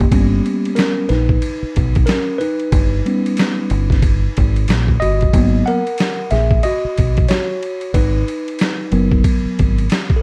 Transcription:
Already playing: A#3 G4
0.01 F#1, kick
0.12 G1 G3 B3 C#4, kick, ride
0.46 ride
0.65 ride
0.75 C#4 A#4, snare, hi-hat pedal, ride
1.09 A#1 D#4 B4, snare, ride
1.29 kick
1.42 ride
1.62 muted fingered electric bass stroke
1.76 B1, kick, ride
1.95 kick, ride
2.06 C#4 A#4, snare, hi-hat pedal, ride
2.38 D#4 B4, ride
2.60 ride
2.72 G1, kick, ride
3.05 G3 B3 C#4, ride
3.26 ride
3.37 snare, hi-hat pedal, ride
3.70 G1, ride
3.90 kick, snare, ride
4.02 kick, ride
4.37 G#1, kick, ride
4.56 ride
4.68 A#1, snare, hi-hat pedal, ride
4.88 kick
5.00 G1 F#4 D#5, ride
5.21 kick, ride
5.33 G#1 F#3 A#3 B3, kick, ride
5.66 A#4 F#5, ride
5.87 ride
5.98 snare, hi-hat pedal, ride
6.31 A#1 G#4 E5, snare, ride
6.51 kick
6.63 F#4 D#5, ride
6.85 muted fingered electric bass stroke
6.98 B1, kick, ride
7.17 kick, ride
7.28 F#4 C#5, snare, hi-hat pedal, ride
7.63 ride
7.81 ride
7.94 G#1 D#4 B4, kick, ride
8.28 ride
8.48 ride
8.59 snare, hi-hat pedal, ride
8.92 F#1 F#3 B3 A#4, ride
9.12 kick
9.24 kick, ride
9.45 muted fingered electric bass stroke
9.59 G#1, kick, ride
9.78 ride
9.90 snare, hi-hat pedal, ride
10.10 kick
10.16 A4

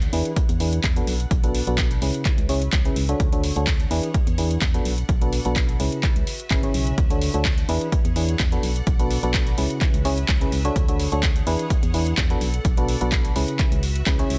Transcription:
Already playing: G#4 C#5 F#5
0.02 closed hi-hat
0.13 E2 E3 D4 E4 G#4 B4, open hi-hat
0.25 closed hi-hat
0.36 kick, closed hi-hat
0.49 E2, closed hi-hat
0.60 E3 D4 E4 G#4 B4, open hi-hat
0.73 closed hi-hat
0.84 E2, kick, clap, closed hi-hat
0.96 B2 D4 F#4 A4 B4, closed hi-hat
1.07 B1 A4, open hi-hat
1.20 closed hi-hat
1.25 D5
1.31 B1, kick, closed hi-hat
1.44 B2 D4 F#4 A4 B4, closed hi-hat
1.55 open hi-hat
1.67 B1 B2 D4 F#4 A4 B4, closed hi-hat
1.78 kick, clap, closed hi-hat
1.91 closed hi-hat
2.02 C#2 C#3 C#4 E4 F#4 G#4 B4, open hi-hat
2.14 closed hi-hat
2.25 kick, clap, closed hi-hat
2.38 C#2 B4, closed hi-hat
2.49 C#3 C#4 E4 G#4 C#5, open hi-hat
2.55 E5
2.62 closed hi-hat
2.73 C#2, kick, clap, closed hi-hat
2.85 C#3 C#4 E4 G#4 B4, closed hi-hat
2.96 C#2, open hi-hat
3.09 D3 D4 F#4 A4 C#5, closed hi-hat
3.20 D2 G#4, kick, closed hi-hat
3.32 D3 D4 F#4 A4 C#5, closed hi-hat
3.41 F#5, open hi-hat
3.52 D2 D3 D4 F#4 A4 C#5, closed hi-hat
3.67 kick, clap, closed hi-hat
3.80 closed hi-hat
3.91 E2 E3 D4 E4 G#4 B4, open hi-hat
4.03 closed hi-hat
4.14 kick, closed hi-hat
4.27 E2, closed hi-hat
4.38 E3 D4 E4 G#4 B4, open hi-hat
4.51 closed hi-hat
4.62 E2, kick, clap, closed hi-hat
4.74 B2 D4 F#4 A4 B4, closed hi-hat
4.85 B1 A4, open hi-hat
4.98 closed hi-hat
5.06 B1 D5, kick, closed hi-hat
5.21 B2 D4 F#4 A4 B4, closed hi-hat
5.33 open hi-hat
5.45 B1 B2 D4 F#4 A4 B4, closed hi-hat
5.56 kick, clap, closed hi-hat
5.69 closed hi-hat
5.80 C#2 C#3 C#4 E4 F#4 G#4 B4, open hi-hat
5.92 closed hi-hat
5.98 E5
6.03 kick, clap, closed hi-hat
6.16 C#2, closed hi-hat
6.21 B4
6.27 open hi-hat
6.40 closed hi-hat
6.51 G#1 C#3 C#4 E4 G#4 B4, kick, clap, closed hi-hat
6.63 C#3 C#4 E4 G#4 C#5, closed hi-hat
6.74 B1, open hi-hat
6.87 closed hi-hat
6.98 D2, kick, closed hi-hat
7.10 D3 D4 F#4 A4 C#5, closed hi-hat
7.21 open hi-hat
7.34 D2 D3 D4 F#4 A4 C#5, closed hi-hat
7.45 kick, clap, closed hi-hat
7.58 closed hi-hat
7.69 E2 E3 D4 E4 G#4 B4, open hi-hat
7.79 C#5 F#5, closed hi-hat
7.92 kick, closed hi-hat
8.05 E2, closed hi-hat
8.16 E3 D4 E4 G#4 B4, open hi-hat
8.29 closed hi-hat
8.40 E2, kick, clap, closed hi-hat
8.52 B2 D4 F#4 A4 B4, closed hi-hat
8.63 B1 A4, open hi-hat
8.75 D5, closed hi-hat
8.87 B1, kick, closed hi-hat
8.99 B2 D4 F#4 A4 B4, closed hi-hat
9.11 open hi-hat
9.23 B1 B2 D4 F#4 A4 B4, closed hi-hat
9.34 kick, clap, closed hi-hat
9.47 closed hi-hat
9.58 C#2 C#3 C#4 E4 F#4 G#4 B4, open hi-hat
9.70 closed hi-hat
9.81 B4, kick, clap, closed hi-hat
9.94 C#2, closed hi-hat
10.01 C#3 C#4 E4 G#4 C#5 E5, open hi-hat
10.18 closed hi-hat
10.29 C#2, kick, clap, closed hi-hat
10.41 C#3 C#4 E4 G#4 B4, closed hi-hat
10.52 C#2, open hi-hat
10.65 D3 D4 F#4 A4 C#5, closed hi-hat
10.76 D2 G#4, kick, closed hi-hat
10.88 D3 D4 F#4 A4 C#5, closed hi-hat
10.99 open hi-hat
11.08 D2 D3 D4 F#4 A4 C#5 F#5, closed hi-hat
11.23 kick, clap, closed hi-hat
11.36 closed hi-hat
11.47 E2 E3 D4 E4 G#4 B4, open hi-hat
11.59 closed hi-hat
11.70 kick, closed hi-hat
11.83 E2, closed hi-hat
11.94 E3 D4 E4 G#4 B4, open hi-hat
12.07 closed hi-hat
12.18 E2, kick, clap, closed hi-hat
12.30 B2 D4 F#4 A4 B4, closed hi-hat
12.41 B1 A4, open hi-hat
12.54 closed hi-hat
12.63 B1 D5, kick, closed hi-hat
12.77 B2 D4 F#4 A4 B4, closed hi-hat
12.88 open hi-hat
13.01 B1 B2 D4 F#4 A4 B4, closed hi-hat
13.12 kick, clap, closed hi-hat
13.25 closed hi-hat
13.36 C#2 C#3 C#4 E4 F#4 G#4 B4, open hi-hat
13.43 B4
13.48 closed hi-hat
13.59 E5, kick, clap, closed hi-hat
13.72 C#2, closed hi-hat
13.83 open hi-hat
13.96 closed hi-hat
14.06 C#2 C#3 C#4 E4 G#4 B4, kick, clap, closed hi-hat
14.19 C#3 C#4 E4 G#4 C#5, closed hi-hat
14.30 C#2, open hi-hat

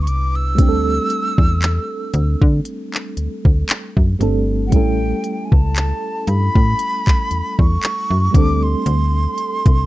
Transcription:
Already playing: G3 B3 D4 E4 B4
0.02 C#6
0.07 C2 D6, closed hi-hat
0.36 E6
0.55 D2 G3 A3 C4, kick, closed hi-hat
0.60 D4 G4
0.69 A4
1.10 closed hi-hat
1.38 E2, kick
1.62 clap, closed hi-hat
2.14 D2, closed hi-hat
2.42 D3, kick
2.65 closed hi-hat
2.94 clap
3.17 D2, closed hi-hat
3.45 D2, kick
3.69 clap, closed hi-hat
3.97 F#2, kick
4.19 G1 G3 A3 C4 D4 A4, closed hi-hat
4.67 G3 F#5
4.71 A1 A3 C#4 E4 G5, kick, closed hi-hat
4.76 A4
5.24 closed hi-hat
5.45 G#5
5.52 C#2 A5, kick
5.76 clap, closed hi-hat
6.27 G2 B5, closed hi-hat
6.55 A2, kick
6.79 closed hi-hat
7.07 kick, clap
7.31 E2, closed hi-hat
7.59 E2 C#6, kick
7.83 clap, closed hi-hat
8.11 F#2
8.31 D2 G3 A3 C4 D6, kick, closed hi-hat
8.36 D4 A4
8.63 C6
8.86 D2, closed hi-hat
9.38 closed hi-hat
9.66 C2, kick, closed hi-hat

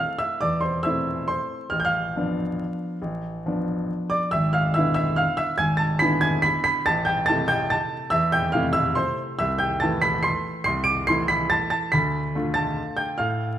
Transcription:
Already playing: A3 C4 E4 F5 F6
0.18 E5 E6
0.41 E2 D5 D6
0.61 C5 C6
0.83 A3 C4 E4 E5 E6
1.28 C5 C6
1.70 A1 F6
1.80 G6
1.85 F5 F6
2.16 F3 B3 D4
3.02 A1
3.46 F3 B3 D4
4.10 D5 D6
4.31 G#1 E5 E6
4.53 F5 F6
4.74 D3 B3 E4 E5 E6
4.94 E5 E6
5.16 F5 F6
5.37 E5 E6
5.58 G#1 G#5 G#6
5.77 A5 A6
5.99 D3 B3 E4 B5 B6
6.21 G#5 G#6
6.42 B5 B6
6.64 B5 B6
6.86 A1 A5 A6
7.05 G5 G6
7.26 C3 A3 E4 A5 A6
7.48 G5 G6
7.70 A5 A6
8.10 E2 E5 E6
8.32 G5 G6
8.52 C3 A3 E4 F5 F6
8.73 E5 E6
8.95 C5 C6
9.39 C2 E5 E6
9.59 G5 G6
9.80 E3 A3 E4 A5 A6
10.02 B5 B6
10.23 C6 C7
10.64 C2 C6 C7
10.84 D6 D7
11.07 E3 A3 E4 C6 C7
11.28 B5 B6
11.50 A5 A6
11.70 A5 A6
11.92 D2 B5 B6
12.35 D3 A3 F4
12.54 A5 A6
12.97 G5 G6
13.18 A2 F5 F6

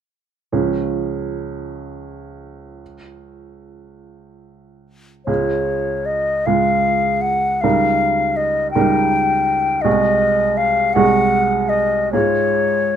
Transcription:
0.52 C#2 F3 C#4 G#4
5.25 C#2 G#3 F4 G#4 C#5
6.06 D#5
6.46 C#2 G#3 F4 G#4 F5
7.21 F#5
7.61 C#2 G3 D#4 A#4 F5
8.37 D#5
8.71 G5
8.75 C#2 G3 D#4 A#4
9.82 C2 G#3 F#4 G#4 D#5
10.57 F5
10.93 C2 G#3 F#4 G#4 F#5
11.69 D#5
12.13 G#2 G#3 F4 G#4 C#5

